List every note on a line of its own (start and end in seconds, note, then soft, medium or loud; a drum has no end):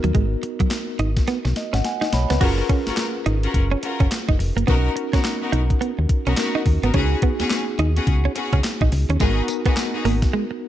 0.00 0.10 F#3 medium
0.00 2.09 B3 medium
0.00 2.09 D#4 medium
0.00 2.10 F#4 medium
0.00 1.82 A#4 medium
0.00 closed hi-hat medium
0.04 0.12 D#2 loud
0.15 0.36 G#1 medium
0.15 0.24 G#3 medium
0.15 kick loud
0.15 closed hi-hat medium
0.43 muted clean electric guitar stroke soft
0.43 closed hi-hat medium
0.60 0.65 G#1 soft
0.60 0.67 F#3 medium
0.60 kick medium
0.60 closed hi-hat medium
0.71 snare loud
0.71 clap medium
0.71 closed hi-hat medium
0.99 1.21 G#1 medium
0.99 1.09 D#4 medium
0.99 closed hi-hat medium
1.17 kick medium
1.17 snare medium
1.17 closed hi-hat medium
1.28 1.38 B3 medium
1.28 snare medium
1.28 closed hi-hat medium
1.45 1.53 B1 loud
1.45 muted clean electric guitar stroke soft
1.45 snare medium
1.56 1.73 D#5 medium
1.56 snare medium
1.56 closed hi-hat medium
1.73 1.82 G#1 medium
1.73 1.79 C#4 medium
1.73 1.84 F#5 medium
1.73 snare medium
1.73 closed hi-hat soft
1.84 2.02 F#5 medium
1.84 2.11 G#5 medium
1.84 snare medium
1.84 closed hi-hat medium
2.01 2.08 D#4 medium
2.01 2.13 D#5 medium
2.01 snare medium
2.13 2.26 B1 medium
2.13 2.30 C#5 medium
2.13 2.40 B5 medium
2.13 muted clean electric guitar stroke soft
2.13 snare loud
2.13 closed hi-hat medium
2.30 2.39 C#2 medium
2.30 2.36 B3 medium
2.30 2.58 B4 medium
2.30 snare medium
2.30 closed hi-hat medium
2.40 2.62 F#1 loud
2.40 4.63 C#4 medium
2.40 2.61 C#4 loud
2.40 2.61 F4 medium
2.40 4.63 F4 medium
2.40 2.51 F#4 medium
2.40 2.61 F#4 medium
2.40 4.64 G#4 medium
2.40 2.61 A#4 loud
2.40 4.64 A#4 medium
2.40 kick loud
2.40 closed hi-hat medium
2.40 crash medium
2.58 muted clean electric guitar stroke soft
2.69 2.79 C#4 medium
2.69 kick loud
2.69 closed hi-hat medium
2.86 2.91 G#1 soft
2.86 3.02 C#4 medium
2.86 3.02 F4 medium
2.86 3.02 F#4 medium
2.86 3.02 A#4 medium
2.86 snare medium
2.86 closed hi-hat medium
2.97 snare loud
2.97 clap medium
2.97 closed hi-hat medium
3.26 3.47 G#1 medium
3.26 3.36 D#4 medium
3.26 closed hi-hat medium
3.43 3.59 C#4 medium
3.43 3.59 F4 medium
3.43 3.59 F#4 medium
3.43 3.59 A#4 medium
3.43 closed hi-hat medium
3.54 3.75 F#1 loud
3.54 kick medium
3.54 closed hi-hat medium
3.71 3.78 C#4 medium
3.83 4.03 C#4 medium
3.83 4.03 F4 medium
3.83 4.03 F#4 medium
3.83 4.03 A#4 medium
3.83 muted clean electric guitar stroke soft
3.83 closed hi-hat medium
4.00 4.08 F#1 medium
4.00 4.06 C#4 medium
4.00 kick loud
4.00 closed hi-hat soft
4.12 snare loud
4.12 clap medium
4.12 closed hi-hat medium
4.29 4.37 F#1 medium
4.29 4.35 D#4 medium
4.29 kick medium
4.39 4.52 F1 medium
4.39 muted clean electric guitar stroke soft
4.39 open hi-hat medium
4.56 4.65 F#1 medium
4.56 4.63 A#3 medium
4.56 closed hi-hat medium
4.67 4.89 B1 loud
4.67 4.77 B3 loud
4.67 4.88 B3 medium
4.67 6.34 C#4 medium
4.67 6.34 D#4 medium
4.67 4.88 D#4 medium
4.67 4.88 F#4 medium
4.67 6.35 F#4 medium
4.67 4.88 A#4 loud
4.67 6.35 A#4 medium
4.67 kick loud
4.67 closed hi-hat medium
4.96 muted clean electric guitar stroke soft
4.96 closed hi-hat medium
5.13 5.18 B1 soft
5.13 5.29 B3 medium
5.13 5.19 C#4 medium
5.13 5.29 D#4 medium
5.13 5.29 F#4 medium
5.13 5.29 A#4 medium
5.13 kick loud
5.13 snare medium
5.13 closed hi-hat medium
5.25 snare loud
5.25 clap medium
5.25 closed hi-hat medium
5.41 5.57 B3 medium
5.41 5.57 D#4 medium
5.41 5.57 F#4 medium
5.41 5.57 A#4 medium
5.52 5.74 B1 medium
5.52 5.62 D#4 medium
5.52 closed hi-hat medium
5.70 kick medium
5.70 closed hi-hat medium
5.81 5.91 B3 medium
5.81 closed hi-hat medium
5.99 6.07 D#2 medium
5.99 muted clean electric guitar stroke soft
6.09 kick medium
6.09 closed hi-hat medium
6.26 6.35 B1 medium
6.26 6.36 B3 medium
6.26 6.33 C#4 medium
6.26 6.36 D#4 medium
6.26 6.36 F#4 medium
6.26 6.37 A#4 medium
6.26 closed hi-hat medium
6.37 6.57 B3 medium
6.37 6.94 C#4 medium
6.37 6.58 D#4 medium
6.37 6.93 D#4 soft
6.37 6.58 F#4 medium
6.37 6.94 F#4 soft
6.37 6.58 A#4 medium
6.37 6.95 A#4 medium
6.37 snare loud
6.37 clap medium
6.37 closed hi-hat medium
6.55 6.61 D#4 medium
6.66 6.79 D#2 medium
6.66 muted clean electric guitar stroke soft
6.66 kick medium
6.66 open hi-hat medium
6.83 6.91 G#1 medium
6.83 6.92 B3 medium
6.83 6.90 B3 medium
6.83 6.99 D#4 medium
6.83 6.93 F#4 medium
6.83 6.99 A#4 medium
6.83 closed hi-hat medium
6.93 7.15 C#2 loud
6.93 9.16 B3 medium
6.93 7.14 B3 loud
6.93 7.14 C#4 medium
6.93 7.04 C#4 loud
6.93 9.17 D#4 medium
6.93 7.14 F#4 medium
6.93 9.17 F#4 medium
6.93 7.14 G#4 loud
6.93 9.17 G#4 medium
6.93 kick loud
6.93 closed hi-hat medium
7.12 muted clean electric guitar stroke soft
7.22 7.32 B3 medium
7.22 kick loud
7.22 closed hi-hat medium
7.39 7.44 D#2 soft
7.39 7.55 B3 medium
7.39 7.55 C#4 medium
7.39 7.55 F#4 medium
7.39 7.55 G#4 medium
7.39 snare medium
7.39 closed hi-hat medium
7.50 snare loud
7.50 clap medium
7.50 closed hi-hat medium
7.79 8.00 D#2 loud
7.79 7.89 D#4 medium
7.79 closed hi-hat medium
7.96 8.12 B3 medium
7.96 8.12 C#4 medium
7.96 8.12 F#4 medium
7.96 8.12 G#4 medium
7.96 closed hi-hat medium
8.07 8.28 C#2 loud
8.07 kick loud
8.07 closed hi-hat medium
8.25 8.31 C#4 medium
8.35 8.56 B3 medium
8.35 8.56 C#4 medium
8.35 8.56 F#4 medium
8.35 8.56 G#4 medium
8.35 muted clean electric guitar stroke soft
8.35 closed hi-hat medium
8.53 8.61 C#2 loud
8.53 8.59 C#4 medium
8.53 kick loud
8.53 closed hi-hat soft
8.64 snare loud
8.64 clap medium
8.64 closed hi-hat medium
8.81 8.89 A#1 medium
8.81 8.88 D#4 medium
8.81 kick medium
8.92 9.05 C#2 loud
8.92 muted clean electric guitar stroke soft
8.92 open hi-hat medium
9.09 9.18 D#2 loud
9.09 9.16 C#4 medium
9.09 closed hi-hat medium
9.20 9.41 G#1 loud
9.20 9.30 G#3 medium
9.20 9.40 B3 loud
9.20 10.68 B3 medium
9.20 9.40 D#4 medium
9.20 10.68 D#4 medium
9.20 9.40 F#4 medium
9.20 10.68 F#4 medium
9.20 9.41 G#4 loud
9.20 10.68 A#4 medium
9.20 kick loud
9.20 closed hi-hat medium
9.20 tambourine medium
9.48 muted clean electric guitar stroke soft
9.48 closed hi-hat medium
9.48 tambourine medium
9.66 9.70 G#1 medium
9.66 9.81 B3 medium
9.66 9.72 B3 medium
9.66 9.81 D#4 medium
9.66 9.81 F#4 medium
9.66 9.82 G#4 medium
9.66 kick loud
9.66 closed hi-hat medium
9.77 snare loud
9.77 clap medium
9.77 closed hi-hat medium
9.77 tambourine loud
9.94 10.10 B3 medium
9.94 10.10 D#4 medium
9.94 10.10 F#4 medium
9.94 10.10 G#4 medium
10.05 10.26 G#1 medium
10.05 10.15 A#3 medium
10.05 open hi-hat medium
10.22 kick medium
10.22 snare medium
10.22 closed hi-hat medium
10.33 10.43 G#3 medium
10.51 muted clean electric guitar stroke soft